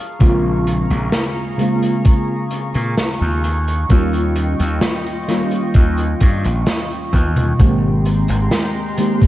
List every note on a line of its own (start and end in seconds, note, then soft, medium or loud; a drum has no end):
0.00 3.40 G#4 medium
0.00 3.40 F5 medium
0.00 3.40 A#5 medium
0.00 7.55 C#6 medium
0.19 0.84 A#1 medium
0.19 1.53 C#3 medium
0.19 1.53 G#3 medium
0.19 1.54 A#3 medium
0.19 1.54 C4 medium
0.19 1.55 F4 loud
0.19 kick loud
0.19 closed hi-hat medium
0.67 closed hi-hat medium
0.90 1.09 A#1 medium
0.90 closed hi-hat medium
1.12 snare loud
1.12 closed hi-hat medium
1.57 3.40 C#3 medium
1.57 3.41 G#3 medium
1.57 3.41 A#3 medium
1.57 3.42 C4 medium
1.57 3.42 F4 loud
1.57 closed hi-hat medium
1.83 closed hi-hat medium
2.05 kick loud
2.05 closed hi-hat medium
2.51 closed hi-hat medium
2.74 2.94 A#2 loud
2.74 closed hi-hat medium
2.98 snare loud
2.98 closed hi-hat medium
3.21 3.84 D#2 loud
3.44 7.56 F4 medium
3.44 7.56 D#5 medium
3.44 7.56 G5 medium
3.44 closed hi-hat medium
3.68 closed hi-hat medium
3.89 4.54 D#2 medium
3.89 5.22 D#3 medium
3.89 5.23 G3 medium
3.89 5.23 A#3 medium
3.89 5.24 C#4 medium
3.89 5.24 F4 loud
3.89 kick loud
3.89 closed hi-hat medium
4.13 closed hi-hat medium
4.36 closed hi-hat medium
4.60 4.79 D#2 medium
4.60 closed hi-hat medium
4.81 snare loud
4.81 closed hi-hat medium
5.06 closed hi-hat medium
5.28 7.53 D#3 medium
5.28 7.54 G3 medium
5.28 7.54 A#3 medium
5.28 7.54 C#4 medium
5.28 7.55 F4 medium
5.28 snare soft
5.28 closed hi-hat medium
5.51 closed hi-hat medium
5.74 6.13 D#2 medium
5.74 kick loud
5.74 closed hi-hat loud
5.97 closed hi-hat soft
6.20 6.47 G2 loud
6.20 kick medium
6.20 closed hi-hat loud
6.44 6.64 A#1 medium
6.44 closed hi-hat medium
6.66 snare loud
6.66 closed hi-hat medium
6.91 closed hi-hat soft
7.13 7.52 D#2 loud
7.13 kick medium
7.13 closed hi-hat medium
7.13 high tom medium
7.36 closed hi-hat medium
7.36 mid tom medium
7.59 8.23 G#1 medium
7.59 8.92 D#3 medium
7.59 8.92 G#3 medium
7.59 9.27 G#3 medium
7.59 8.93 A#3 medium
7.59 8.93 C4 medium
7.59 8.94 G4 loud
7.59 9.27 G5 medium
7.59 9.27 A#5 medium
7.59 9.27 C6 medium
7.59 kick loud
7.59 closed hi-hat medium
8.05 closed hi-hat medium
8.28 8.48 G#1 medium
8.28 closed hi-hat medium
8.51 snare loud
8.51 closed hi-hat loud
8.97 9.27 D#3 medium
8.97 9.27 G#3 medium
8.97 9.27 A#3 medium
8.97 9.27 C4 medium
8.97 9.27 G4 loud
8.97 closed hi-hat medium
9.21 kick loud
9.21 closed hi-hat medium